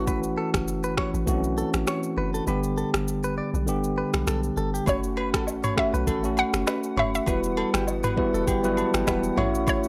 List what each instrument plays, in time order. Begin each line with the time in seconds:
Already playing: log drum bass A1, tine electric piano E3 A3 C#4 F#4
0.07 clean electric guitar B4, kick, shaker
0.23 shaker
0.38 clean electric guitar A4
0.54 log drum bass F#1, finger snap, kick, cross-stick, shaker
0.68 shaker
0.83 clean electric guitar B4, shaker
0.97 clean electric guitar C#5, finger snap, kick, cross-stick
1.14 log drum bass A1, shaker
1.26 log drum bass B1, tine electric piano E3 A3 C4 F#4, kick, shaker
1.34 tine electric piano C#4
1.44 shaker
1.58 clean electric guitar A4, shaker
1.74 log drum bass A1, finger snap, cross-stick, shaker
1.87 clean electric guitar C#5, finger snap, cross-stick, shaker
2.03 shaker
2.17 log drum bass F#1, clean electric guitar B4
2.34 clean electric guitar A4, shaker
2.46 log drum bass G1, tine electric piano D3 G3 B3 G4, clean electric guitar B4, shaker
2.63 shaker
2.78 clean electric guitar A4, shaker
2.94 log drum bass G1, finger snap, cross-stick, shaker
3.08 shaker
3.23 clean electric guitar B4, shaker
3.38 clean electric guitar D5
3.54 log drum bass B1, shaker
3.66 log drum bass G1, tine electric piano D3 G3 B3 G4, shaker
3.84 shaker
3.98 clean electric guitar B4
4.13 log drum bass B1, finger snap, cross-stick, shaker
4.27 log drum bass B1, clean electric guitar A4, finger snap, cross-stick, shaker
4.43 shaker
4.57 log drum bass G1, clean electric guitar A4, shaker
4.74 clean electric guitar G4, shaker
4.86 log drum bass F#1, tine electric piano A3 C#4 F#4, analog synth pad A3 C#4 F#5, clean electric guitar C#5, synth pluck C#5, kick, high agogo, shaker
5.03 shaker
5.17 clean electric guitar B4, high agogo
5.34 log drum bass A1, clean electric guitar A4, finger snap, kick, cross-stick, shaker
5.47 low woodblock, shaker
5.63 clean electric guitar C#5, mid tom, high agogo, shaker
5.76 tine electric piano A3 C#4 F#4, synth pluck E5, finger snap, kick, cross-stick
5.94 log drum bass B1, clean electric guitar B4, shaker
6.07 log drum bass A1, clean electric guitar A4, kick, high agogo, shaker
6.23 tine electric piano A3 C#4 F#4, shaker
6.37 synth pluck F#5, high agogo, shaker
6.53 log drum bass F#1, finger snap, cross-stick, shaker
6.67 clean electric guitar B4, finger snap, cross-stick, low woodblock, shaker
6.83 shaker
6.97 log drum bass F#1, clean electric guitar C#5, synth pluck E5, mid tom, high agogo
7.15 synth pluck E5, shaker
7.26 log drum bass E1, analog synth pad E3 G3 B3, tine electric piano G3 B3 E4 F#4 B4, clean electric guitar B4, kick, high agogo, shaker
7.44 shaker
7.57 clean electric guitar A4, high agogo
7.74 log drum bass G1, clean electric guitar G4, finger snap, cross-stick, shaker
7.87 low woodblock, shaker
8.03 clean electric guitar B4, mid tom, high agogo, shaker
8.16 tine electric piano G3 B3 E4 F#4 B4, kick
8.34 log drum bass E1, clean electric guitar A4, shaker
8.47 log drum bass G1, clean electric guitar G4, kick, high agogo, shaker
8.63 tine electric piano F#3 B3 E4 F#4 B4, shaker
8.69 tine electric piano G3
8.77 tine electric piano A5, high agogo, shaker
8.94 log drum bass G1, tine electric piano G5, finger snap, cross-stick, shaker
9.07 log drum bass E1, clean electric guitar B4, tine electric piano F#5, finger snap, kick, cross-stick, low woodblock, shaker
9.23 shaker
9.36 log drum bass A1, tine electric piano A3 C#4 E4 F#4 C#5 E5, analog synth pad A3 C#4, clean electric guitar C#5, mid tom, high agogo
9.55 shaker
9.67 clean electric guitar C#5, synth pluck C#5, kick, high agogo, shaker
9.84 shaker